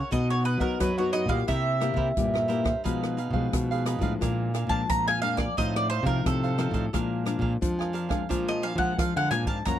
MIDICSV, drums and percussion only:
0, 0, Header, 1, 2, 480
1, 0, Start_track
1, 0, Tempo, 681818
1, 1047, Time_signature, 4, 2, 24, 8
1, 6892, End_track
2, 0, Start_track
2, 0, Title_t, "Drums"
2, 83, Note_on_c, 9, 42, 60
2, 86, Note_on_c, 9, 36, 66
2, 154, Note_off_c, 9, 42, 0
2, 156, Note_off_c, 9, 36, 0
2, 212, Note_on_c, 9, 37, 58
2, 283, Note_off_c, 9, 37, 0
2, 318, Note_on_c, 9, 42, 44
2, 388, Note_off_c, 9, 42, 0
2, 425, Note_on_c, 9, 42, 24
2, 426, Note_on_c, 9, 36, 69
2, 495, Note_off_c, 9, 42, 0
2, 496, Note_off_c, 9, 36, 0
2, 566, Note_on_c, 9, 37, 64
2, 566, Note_on_c, 9, 42, 65
2, 567, Note_on_c, 9, 36, 79
2, 636, Note_off_c, 9, 37, 0
2, 636, Note_off_c, 9, 42, 0
2, 637, Note_off_c, 9, 36, 0
2, 694, Note_on_c, 9, 42, 30
2, 765, Note_off_c, 9, 42, 0
2, 795, Note_on_c, 9, 37, 72
2, 795, Note_on_c, 9, 42, 46
2, 865, Note_off_c, 9, 37, 0
2, 865, Note_off_c, 9, 42, 0
2, 903, Note_on_c, 9, 42, 27
2, 906, Note_on_c, 9, 36, 70
2, 973, Note_off_c, 9, 42, 0
2, 976, Note_off_c, 9, 36, 0
2, 1046, Note_on_c, 9, 37, 54
2, 1046, Note_on_c, 9, 42, 50
2, 1047, Note_on_c, 9, 36, 64
2, 1116, Note_off_c, 9, 37, 0
2, 1116, Note_off_c, 9, 42, 0
2, 1117, Note_off_c, 9, 36, 0
2, 1275, Note_on_c, 9, 37, 63
2, 1275, Note_on_c, 9, 42, 43
2, 1346, Note_off_c, 9, 37, 0
2, 1346, Note_off_c, 9, 42, 0
2, 1387, Note_on_c, 9, 36, 66
2, 1457, Note_off_c, 9, 36, 0
2, 1527, Note_on_c, 9, 42, 59
2, 1528, Note_on_c, 9, 36, 86
2, 1597, Note_off_c, 9, 42, 0
2, 1598, Note_off_c, 9, 36, 0
2, 1656, Note_on_c, 9, 37, 75
2, 1726, Note_off_c, 9, 37, 0
2, 1757, Note_on_c, 9, 42, 47
2, 1828, Note_off_c, 9, 42, 0
2, 1868, Note_on_c, 9, 36, 74
2, 1869, Note_on_c, 9, 37, 71
2, 1869, Note_on_c, 9, 42, 33
2, 1938, Note_off_c, 9, 36, 0
2, 1939, Note_off_c, 9, 37, 0
2, 1939, Note_off_c, 9, 42, 0
2, 2009, Note_on_c, 9, 36, 58
2, 2009, Note_on_c, 9, 42, 64
2, 2079, Note_off_c, 9, 36, 0
2, 2080, Note_off_c, 9, 42, 0
2, 2136, Note_on_c, 9, 37, 66
2, 2136, Note_on_c, 9, 42, 28
2, 2206, Note_off_c, 9, 37, 0
2, 2206, Note_off_c, 9, 42, 0
2, 2240, Note_on_c, 9, 42, 50
2, 2311, Note_off_c, 9, 42, 0
2, 2348, Note_on_c, 9, 36, 62
2, 2418, Note_off_c, 9, 36, 0
2, 2486, Note_on_c, 9, 37, 73
2, 2486, Note_on_c, 9, 42, 71
2, 2488, Note_on_c, 9, 36, 89
2, 2557, Note_off_c, 9, 37, 0
2, 2557, Note_off_c, 9, 42, 0
2, 2559, Note_off_c, 9, 36, 0
2, 2618, Note_on_c, 9, 42, 33
2, 2688, Note_off_c, 9, 42, 0
2, 2717, Note_on_c, 9, 37, 69
2, 2717, Note_on_c, 9, 42, 58
2, 2788, Note_off_c, 9, 37, 0
2, 2788, Note_off_c, 9, 42, 0
2, 2826, Note_on_c, 9, 42, 32
2, 2827, Note_on_c, 9, 36, 70
2, 2897, Note_off_c, 9, 42, 0
2, 2898, Note_off_c, 9, 36, 0
2, 2968, Note_on_c, 9, 36, 66
2, 2969, Note_on_c, 9, 37, 59
2, 2969, Note_on_c, 9, 42, 63
2, 3039, Note_off_c, 9, 36, 0
2, 3040, Note_off_c, 9, 37, 0
2, 3040, Note_off_c, 9, 42, 0
2, 3199, Note_on_c, 9, 37, 63
2, 3199, Note_on_c, 9, 42, 49
2, 3269, Note_off_c, 9, 37, 0
2, 3269, Note_off_c, 9, 42, 0
2, 3308, Note_on_c, 9, 36, 71
2, 3379, Note_off_c, 9, 36, 0
2, 3448, Note_on_c, 9, 36, 88
2, 3450, Note_on_c, 9, 42, 65
2, 3519, Note_off_c, 9, 36, 0
2, 3520, Note_off_c, 9, 42, 0
2, 3575, Note_on_c, 9, 37, 69
2, 3646, Note_off_c, 9, 37, 0
2, 3680, Note_on_c, 9, 42, 54
2, 3751, Note_off_c, 9, 42, 0
2, 3788, Note_on_c, 9, 36, 67
2, 3789, Note_on_c, 9, 37, 75
2, 3789, Note_on_c, 9, 42, 31
2, 3858, Note_off_c, 9, 36, 0
2, 3859, Note_off_c, 9, 37, 0
2, 3859, Note_off_c, 9, 42, 0
2, 3929, Note_on_c, 9, 36, 71
2, 3932, Note_on_c, 9, 42, 60
2, 3999, Note_off_c, 9, 36, 0
2, 4002, Note_off_c, 9, 42, 0
2, 4055, Note_on_c, 9, 37, 70
2, 4126, Note_off_c, 9, 37, 0
2, 4157, Note_on_c, 9, 42, 39
2, 4227, Note_off_c, 9, 42, 0
2, 4267, Note_on_c, 9, 36, 63
2, 4268, Note_on_c, 9, 42, 29
2, 4337, Note_off_c, 9, 36, 0
2, 4338, Note_off_c, 9, 42, 0
2, 4407, Note_on_c, 9, 36, 89
2, 4407, Note_on_c, 9, 37, 74
2, 4407, Note_on_c, 9, 42, 74
2, 4478, Note_off_c, 9, 36, 0
2, 4478, Note_off_c, 9, 37, 0
2, 4478, Note_off_c, 9, 42, 0
2, 4535, Note_on_c, 9, 42, 33
2, 4605, Note_off_c, 9, 42, 0
2, 4635, Note_on_c, 9, 37, 69
2, 4635, Note_on_c, 9, 42, 48
2, 4705, Note_off_c, 9, 37, 0
2, 4705, Note_off_c, 9, 42, 0
2, 4745, Note_on_c, 9, 36, 61
2, 4745, Note_on_c, 9, 42, 31
2, 4815, Note_off_c, 9, 36, 0
2, 4816, Note_off_c, 9, 42, 0
2, 4883, Note_on_c, 9, 37, 65
2, 4883, Note_on_c, 9, 42, 60
2, 4885, Note_on_c, 9, 36, 63
2, 4954, Note_off_c, 9, 37, 0
2, 4954, Note_off_c, 9, 42, 0
2, 4956, Note_off_c, 9, 36, 0
2, 5112, Note_on_c, 9, 37, 69
2, 5112, Note_on_c, 9, 42, 44
2, 5183, Note_off_c, 9, 37, 0
2, 5183, Note_off_c, 9, 42, 0
2, 5225, Note_on_c, 9, 36, 60
2, 5295, Note_off_c, 9, 36, 0
2, 5365, Note_on_c, 9, 42, 69
2, 5366, Note_on_c, 9, 36, 87
2, 5436, Note_off_c, 9, 36, 0
2, 5436, Note_off_c, 9, 42, 0
2, 5495, Note_on_c, 9, 37, 66
2, 5565, Note_off_c, 9, 37, 0
2, 5597, Note_on_c, 9, 42, 44
2, 5668, Note_off_c, 9, 42, 0
2, 5705, Note_on_c, 9, 36, 65
2, 5707, Note_on_c, 9, 37, 63
2, 5707, Note_on_c, 9, 42, 31
2, 5775, Note_off_c, 9, 36, 0
2, 5777, Note_off_c, 9, 37, 0
2, 5777, Note_off_c, 9, 42, 0
2, 5846, Note_on_c, 9, 36, 62
2, 5847, Note_on_c, 9, 42, 63
2, 5916, Note_off_c, 9, 36, 0
2, 5918, Note_off_c, 9, 42, 0
2, 5974, Note_on_c, 9, 37, 71
2, 5974, Note_on_c, 9, 42, 28
2, 6045, Note_off_c, 9, 37, 0
2, 6045, Note_off_c, 9, 42, 0
2, 6076, Note_on_c, 9, 42, 45
2, 6146, Note_off_c, 9, 42, 0
2, 6185, Note_on_c, 9, 36, 64
2, 6255, Note_off_c, 9, 36, 0
2, 6325, Note_on_c, 9, 36, 94
2, 6328, Note_on_c, 9, 37, 65
2, 6328, Note_on_c, 9, 42, 68
2, 6396, Note_off_c, 9, 36, 0
2, 6398, Note_off_c, 9, 37, 0
2, 6398, Note_off_c, 9, 42, 0
2, 6456, Note_on_c, 9, 42, 31
2, 6526, Note_off_c, 9, 42, 0
2, 6555, Note_on_c, 9, 37, 70
2, 6555, Note_on_c, 9, 42, 53
2, 6625, Note_off_c, 9, 37, 0
2, 6625, Note_off_c, 9, 42, 0
2, 6663, Note_on_c, 9, 36, 70
2, 6664, Note_on_c, 9, 42, 30
2, 6734, Note_off_c, 9, 36, 0
2, 6734, Note_off_c, 9, 42, 0
2, 6803, Note_on_c, 9, 37, 60
2, 6803, Note_on_c, 9, 42, 61
2, 6804, Note_on_c, 9, 36, 64
2, 6874, Note_off_c, 9, 36, 0
2, 6874, Note_off_c, 9, 37, 0
2, 6874, Note_off_c, 9, 42, 0
2, 6892, End_track
0, 0, End_of_file